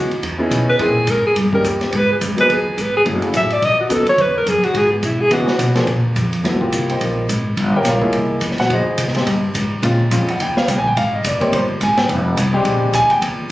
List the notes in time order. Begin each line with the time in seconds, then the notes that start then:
Already playing: F#4
0.09 muted upright bass stroke, ride
0.23 E2, kick, ride
0.38 B3 C#4 D#4 E4 G#4
0.50 B2, kick, hi-hat pedal, ride
0.70 B4
0.79 A#2 A#3 C4 C#4 E4 G#4, kick, ride
1.07 G#2 A#4, kick, hi-hat pedal, ride
1.26 G#4
1.36 G2, kick, ride
1.53 G3 A#3 C#4 D#4 G4 A#4, kick
1.64 D#2 G4, kick, hi-hat pedal, ride
1.81 snare, ride
1.92 G#2 B4, kick, ride
2.12 G#4
2.21 F#2, kick, hi-hat pedal, ride
2.36 F#3 A#3 B3 D#4 G#4, ride
2.41 B4
2.49 D#2 G#4, kick, ride
2.78 G#1, kick, hi-hat pedal, ride
2.82 B4
2.97 G#4
3.05 F#1 F#3 A3 C#4 E4 G#4, kick, ride
3.22 ride
3.34 A1 E5, kick, hi-hat pedal, ride
3.50 D5, ride
3.62 B1 D#5, kick, ride
3.77 F#4, muted upright bass stroke
3.89 D#2 F#3 B3 C#4 D#4 A4, kick, hi-hat pedal, ride
4.07 C#5, ride
4.18 E2 B4, kick, ride
4.37 A#4
4.46 F#2 G#4, kick, hi-hat pedal, ride
4.63 F#4, muted upright bass stroke, ride
4.74 G#2 G#4, kick, ride
4.92 B3
5.03 B2 E4, kick, hi-hat pedal, ride
5.21 G#4
5.30 C#3 E3 B3 C#4 D#4 F#4 G#4, kick, ride
5.47 snare
5.59 B2, kick, hi-hat pedal, ride
5.75 F3 A#3 C4 D4 G#4, snare, ride
5.87 A#2, kick, ride
6.16 F2, kick, hi-hat pedal, ride
6.33 ride
6.43 D#2 A3 B3 E4 F#4, kick, snare, ride
6.53 C2
6.60 A#1 A#3 C4 F4 G4, kick
6.72 C2, kick, hi-hat pedal, ride
6.89 G4 C5 D#5 G5, ride
7.00 A#1 D#4 A#4 C5 D#5, kick, ride
7.29 G#1, kick, hi-hat pedal, ride
7.57 G1, kick, ride
7.76 G4 A#4 C#5 G5
7.85 A#1 F4 A#4 C#5 F5, kick, snare, hi-hat pedal, ride
7.94 G1
8.01 F1 A#3 D#4 E4 G#4, kick
8.13 C2, kick, ride
8.41 E2, kick, hi-hat pedal, ride
8.51 C2, snare
8.58 A#1 F#4 F#5, snare, ride
8.70 F2 D#4 G#4 C5 D#5, kick, ride
8.85 muted upright bass stroke
8.98 C3, kick, hi-hat pedal, ride
9.08 snare
9.15 G#3 C4 D#4 G4, snare, ride
9.26 G2, kick, ride
9.54 G#2, kick, hi-hat pedal, ride
9.82 A#2 G#3 C4 C#4 F4, kick, ride
10.11 F2 G#3 C4 C#4 F4, kick, hi-hat pedal, ride
10.28 F#5, ride
10.40 D#2 G5, kick, ride
10.57 F5, snare
10.68 C2 G5, kick, hi-hat pedal, ride
10.76 A#1 G#5
10.86 G1 G5
10.96 G#1 F5, kick, ride
11.14 D#5
11.24 F1 D5, kick, hi-hat pedal, ride
11.40 A#3 C4 D#4 G4 C#5, muted upright bass stroke, kick, ride
11.52 G1 C5, kick, ride
11.81 G#1 G#5, kick, hi-hat pedal, ride
11.97 G5, snare, ride
12.09 F1, kick, ride
12.37 C2, kick, hi-hat pedal, ride
12.53 G#3 C4 D4 G4
12.65 A#1, kick, ride
12.93 D2 G#5, kick, hi-hat pedal, ride
13.10 G5, ride
13.22 D#2, kick, ride